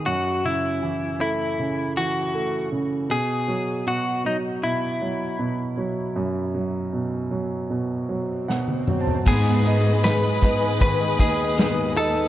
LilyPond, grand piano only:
<<
  \new Staff \with { instrumentName = "Grand piano" } { \time 4/4 \key b \mixolydian \tempo 4 = 78 r1 | r1 | r2. \tuplet 3/2 { fis''4 a''8 } | r1 | }
  \new Staff \with { instrumentName = "Grand piano" } { \clef bass \time 4/4 \key b \mixolydian fis,8 cis8 e8 a8 cis8 e8 a8 cis8 | b,8 fis8 b,8 fis8 b,8 fis8 b,8 fis8 | fis,8 fis8 b,8 fis8 b,8 fis8 b,8 fis8 | b8 dis'8 gis8 dis'8 dis8 dis'4 dis'8 | }
>>